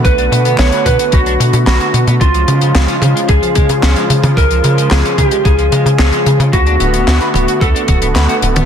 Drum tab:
HH |xxxxxxxxxxxxxxxx|xxxxxxxxxxxxxxxx|xxxxxxxxxxxxxxxx|xxxxxxxxxxxxxxxx|
CP |----x-------x---|----x-------x---|----x-------x---|----x-------x---|
SD |----o-------o---|----o-------o---|----o-------o---|----o-------o---|
T2 |------o---------|------o---o----o|------o---------|------o---o----o|
BD |o-----o-o-------|o-------o-o-----|o-----o-o-------|o-------o-o-----|